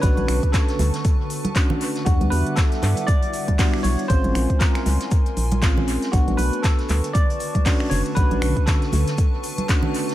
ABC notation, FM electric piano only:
X:1
M:4/4
L:1/8
Q:"Swing 16ths" 1/4=118
K:Bm
V:1 name="FM electric piano"
[A,CDF]6 [A,CDF]2 | [G,B,DF]6 [G,B,DF]2 | [^G,^B,C^E]6 [G,B,CE]2 | [A,B,DF]6 [A,CDF]2 |
[A,CDF]6 [A,CDF]2 |]